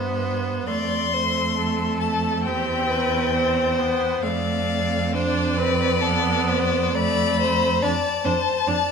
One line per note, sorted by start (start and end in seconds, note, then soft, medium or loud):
0.00 0.66 G2 medium
0.00 0.68 B3 medium
0.00 0.68 C5 medium
0.00 0.23 E5 medium
0.67 2.47 F2 medium
0.67 1.11 A3 medium
0.67 1.15 D5 medium
0.67 1.97 C6 loud
1.12 2.47 A3 medium
1.12 1.57 C5 medium
1.58 2.48 A4 medium
2.00 2.43 A5 medium
2.44 4.22 E2 medium
2.44 3.33 C4 medium
2.44 2.92 G4 medium
2.44 4.19 G5 loud
2.90 3.36 B4 medium
3.34 3.80 C4 medium
3.34 4.24 C5 medium
3.78 4.25 B3 medium
4.22 7.78 F2 loud
4.22 5.15 A3 medium
4.22 5.13 D5 medium
4.22 5.14 F5 loud
5.13 5.59 D4 medium
5.13 5.58 C5 medium
5.13 6.97 D5 loud
5.57 6.03 C4 medium
5.57 6.02 B4 medium
6.01 6.94 B3 medium
6.01 6.49 A4 medium
6.48 6.96 C5 medium
6.95 7.81 A3 medium
6.95 7.40 D5 loud
6.95 7.84 B5 loud
7.40 7.84 C5 loud
7.82 7.91 F2 medium
7.82 7.90 D4 medium
7.82 8.26 D5 loud
7.82 8.91 A5 loud
8.25 8.33 F2 medium
8.25 8.33 D4 medium
8.25 8.70 C5 medium
8.67 8.75 F2 medium
8.67 8.75 D4 medium
8.67 8.91 D5 loud